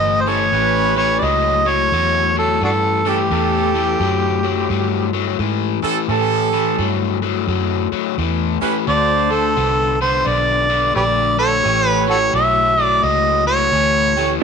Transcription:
Already playing: fingered electric bass G1, overdriven electric guitar A2 E3, harmonica D#5
0.21 harmonica C5
0.26 overdriven electric guitar A2 E3, horn section C#4 G4 A4, harmonica C#5
0.52 fingered electric bass A1, overdriven electric guitar A2 E3, horn section C#4 G4 B4
0.96 overdriven electric guitar A2 E3, harmonica C#5
1.19 fingered electric bass C#2, overdriven electric guitar A2 F#3, harmonica D5
1.24 harmonica D#5
1.65 overdriven electric guitar A2 F#3, harmonica C#5
1.92 fingered electric bass E2, overdriven electric guitar A2 F#3
2.36 overdriven electric guitar A2 F#3, harmonica A4
2.61 fingered electric bass G2, overdriven electric guitar A2 E3, harmonica D4 F#4 A4
3.05 overdriven electric guitar A2 E3, horn section C#4 G4 A4, harmonica G4
3.30 fingered electric bass E2, overdriven electric guitar A2 E3, horn section C#4 G4 A4
3.74 overdriven electric guitar A2 E3
4.00 fingered electric bass F#2, overdriven electric guitar A2 F#3
4.43 overdriven electric guitar A2 F#3
4.69 fingered electric bass G2, overdriven electric guitar A2 F#3
5.13 overdriven electric guitar A2 F#3
5.39 fingered electric bass G#2, overdriven electric guitar A2 E3
5.83 overdriven electric guitar A2 E3, horn section C#4 G4 A4, muted fingered electric bass stroke
6.08 fingered electric bass A2, overdriven electric guitar A2 E3, horn section C#4 G4 A4
6.53 overdriven electric guitar A2 E3
6.78 fingered electric bass G2, overdriven electric guitar A2 F#3
7.22 overdriven electric guitar A2 F#3
7.47 fingered electric bass F#2, overdriven electric guitar A2 F#3
7.92 overdriven electric guitar A2 F#3, muted fingered electric bass stroke
8.18 fingered electric bass E2, overdriven electric guitar A2 E3
8.61 overdriven electric guitar A2 E3, horn section C#4 G4 B4, muted fingered electric bass stroke
8.87 fingered electric bass D2, overdriven electric guitar D3 A3, horn section D4 F#4 C5, harmonica D5
9.30 overdriven electric guitar D3 A3, harmonica A4
9.56 fingered electric bass C2, overdriven electric guitar D3 B3
10.01 overdriven electric guitar D3 B3, harmonica C5
10.25 fingered electric bass B1, overdriven electric guitar D3 B3, harmonica D5
10.69 overdriven electric guitar D3 B3
10.95 fingered electric bass A#1, overdriven electric guitar D3 A3, harmonica G4 B4 D5
11.38 overdriven electric guitar D3 A3, horn section D4 F#4 A4, harmonica C#5
11.64 fingered electric bass A1, overdriven electric guitar A2 E3, horn section G4 A4 C#5
11.88 harmonica B4
12.07 overdriven electric guitar A2 E3, harmonica F#4 A4 C#5
12.33 fingered electric bass B1, overdriven electric guitar A2 F#3, harmonica E5
12.78 overdriven electric guitar A2 F#3
12.84 harmonica D5
13.03 fingered electric bass C#2, overdriven electric guitar A2 F#3, harmonica D#5
13.46 overdriven electric guitar A2 F#3, harmonica C#5
13.72 fingered electric bass D2, overdriven electric guitar A2 E3
14.17 overdriven electric guitar A2 E3, horn section G4 A4 C#5

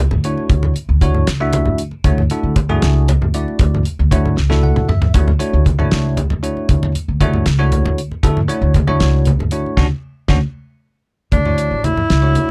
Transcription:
0.11 upright bass D2, low conga
0.24 tine electric piano A3 D4 E4 F#4 C#5, closed hi-hat
0.37 low conga
0.50 upright bass D2, kick, closed hi-hat, high conga
0.63 low conga
0.76 closed hi-hat, low conga
0.89 upright bass D2
1.01 tine electric piano A3 D4 E4 F#4 C#5, kick, closed hi-hat, high conga
1.14 low conga
1.27 upright bass C#2, snare, closed hi-hat
1.40 tine electric piano A3 D4 E4 F#4 E5
1.53 closed hi-hat, high conga
1.65 upright bass D2, low conga
1.78 closed hi-hat
1.91 low conga
2.04 upright bass D2, tine electric piano A3 D4 E4 F#4 C#5, kick, closed hi-hat, high conga
2.18 low conga
2.30 tine electric piano A3 D4 E4 F#4 A4, closed hi-hat, low conga
2.43 upright bass D2
2.56 kick, closed hi-hat, high conga
2.69 tine electric piano A3 D4 E4 F#4 G#4, low conga
2.82 upright bass C#2, snare, closed hi-hat
3.08 closed hi-hat, high conga
3.21 upright bass D2, low conga
3.34 tine electric piano A3 D4 E4 F#4 D5, closed hi-hat
3.48 low conga
3.59 upright bass D2, kick, closed hi-hat, high conga
3.75 low conga
3.85 closed hi-hat, low conga
3.99 upright bass D2
4.11 tine electric piano A3 D4 E4 F#4 C#5, kick, closed hi-hat, high conga
4.25 low conga
4.37 upright bass C#2, snare
4.50 tine electric piano A3 D4 E4 F#4 A4, snare, high conga
4.63 tine electric piano F#5, high conga
4.76 upright bass D2, mid tom, high conga
4.89 tine electric piano E5, mid tom, low conga
5.02 floor tom, low conga
5.14 upright bass D2, tine electric piano A3 D4 E4 F#4 C#5, kick, closed hi-hat, high conga
5.28 low conga
5.39 tine electric piano A3 D4 E4 F#4 C#5, closed hi-hat
5.53 upright bass D2
5.66 kick, closed hi-hat, high conga
5.79 tine electric piano A3 D4 E4 F#4 C#5, low conga
5.91 upright bass C#2, snare, closed hi-hat
6.17 closed hi-hat, high conga
6.30 upright bass D2, low conga
6.43 tine electric piano A3 D4 E4 F#4 C#5, closed hi-hat
6.57 low conga
6.69 upright bass D2, kick, closed hi-hat, high conga
6.83 low conga
6.95 closed hi-hat, low conga
7.08 upright bass D2
7.21 tine electric piano A3 D4 E4 F#4 C#5, kick, closed hi-hat, high conga
7.34 low conga
7.46 upright bass C#2, snare, closed hi-hat
7.59 tine electric piano A3 D4 E4 F#4 C#5
7.72 closed hi-hat, high conga
7.84 upright bass D2, low conga
7.98 closed hi-hat
8.11 low conga
8.23 upright bass D2, tine electric piano A3 D4 E4 F#4 A4, kick, closed hi-hat, high conga
8.37 low conga
8.48 tine electric piano A3 D4 E4 F#4 C#5, closed hi-hat, low conga
8.62 upright bass D2
8.74 kick, closed hi-hat, high conga
8.87 tine electric piano A3 D4 E4 F#4 C#5, low conga
9.00 upright bass C#2, snare, closed hi-hat
9.25 closed hi-hat, high conga
9.39 upright bass D2, low conga
9.51 tine electric piano A3 D4 E4 F#4 C#5, closed hi-hat
9.66 low conga
9.77 upright bass D2, tine electric piano C#4 D4 F#4, kick, snare, high conga
10.28 upright bass D2, tine electric piano C#4 D4 F#4, kick, snare, high conga
11.32 upright bass D2, tenor saxophone D4, kick, closed hi-hat, high conga
11.45 tine electric piano A3 D4 E4 F#4 C#5, low conga
11.58 closed hi-hat
11.71 upright bass A1
11.84 tenor saxophone E4, closed hi-hat, high conga, low conga
11.97 low conga
12.10 upright bass C#2, snare, closed hi-hat
12.22 tine electric piano A3 D4 E4 F#4 C#5, low conga
12.35 closed hi-hat, high conga

